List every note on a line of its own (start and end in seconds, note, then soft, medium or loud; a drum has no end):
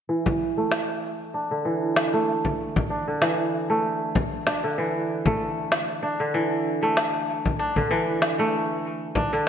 0.09 1.55 E3 medium
0.26 frame drum medium
0.57 2.13 A3 medium
0.71 snare medium
1.34 2.90 D4 medium
1.51 3.06 D3 medium
1.65 3.11 E3 medium
1.96 snare medium
2.14 3.69 A3 medium
2.45 frame drum medium
2.76 frame drum medium
2.90 4.46 D4 medium
3.08 4.63 D3 medium
3.21 4.67 E3 medium
3.21 snare medium
3.70 5.26 A3 medium
4.15 frame drum medium
4.47 6.02 D4 medium
4.47 snare medium
4.64 6.19 D3 medium
4.78 6.24 E3 medium
5.26 6.82 A3 medium
5.26 frame drum medium
5.72 snare medium
6.03 7.59 D4 medium
6.20 7.76 D3 medium
6.34 7.80 E3 medium
6.83 8.39 A3 medium
6.97 snare medium
7.45 frame drum medium
7.59 9.15 D4 medium
7.76 9.32 D3 medium
7.76 frame drum medium
7.91 9.36 E3 medium
8.22 snare medium
8.39 9.49 A3 medium
9.15 9.49 D4 medium
9.15 frame drum medium
9.33 9.49 D3 medium